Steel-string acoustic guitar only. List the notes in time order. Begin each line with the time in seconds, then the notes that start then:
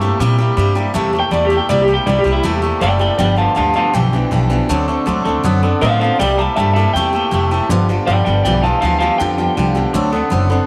0.01 A#3 E4 G4
0.20 C3 G3 A#3 E4 G4
0.38 A#3 E4 G4
0.57 G3 A#3 E4 G4
0.75 A#3 E4 G4
0.94 C3 G3 A#3 E4 G4
1.13 A#3 E4 G4
1.31 G3 A#3 E4 G4
1.50 A#3 E4 G4
1.69 C3 G3 A#3 E4 G4
1.88 A#3 E4 G4
2.07 G3 A#3 E4 G4
2.24 A#3 E4 G4
2.43 C3 G3 A#3 E4 G4
2.62 A#3 E4 G4
2.81 G3 A#3 E4 G4
2.99 A#3 E4 G4
3.19 G2 D3 F3 B3 D4 G4
3.36 F3 B3 D4 G4
3.55 F3 B3 D4 G4
3.74 F3 B3 D4 G4
3.94 G2 D3 F3 B3 D4 G4
4.13 F3 B3 D4 G4
4.31 F3 B3 D4 G4
4.50 F3 B3 D4 G4
4.69 D3 F#3 C4 D4 A4
4.88 C4 D4 A4
5.06 F#3 C4 D4 A4
5.25 C4 D4 A4
5.44 D3 F#3 C4 D4 A4
5.63 C4 D4 A4
5.81 F#3 C4 D4 A4
6.01 C4 D4 A4
6.20 C3 G3 A#3 E4 G4
6.39 A#3 E4 G4
6.56 G3 A#3 E4 G4
6.76 A#3 E4 G4
6.96 C3 G3 A#3 E4 G4
7.13 A#3 E4 G4
7.31 G3 A#3 E4 G4
7.51 A#3 E4 G4
7.70 G2 D3 F3 B3 F4 G4
7.89 F3 B3 F4 G4
8.07 F3 B3 F4 G4
8.26 F3 B3 F4 G4
8.45 G2 D3 F3 B3 F4 G4
8.63 F3 B3 F4 G4
8.82 F3 B3 F4 G4
9.00 F3 B3 F4 G4
9.20 G2 D3 F3 B3 F4 G4
9.38 F3 B3 F4 G4
9.57 F3 B3 F4 G4
9.75 F3 B3 F4 G4
9.94 D3 F#3 C4 D4 A4
10.13 C4 D4 A4
10.30 F#3 C4 D4 A4
10.50 C4 D4 A4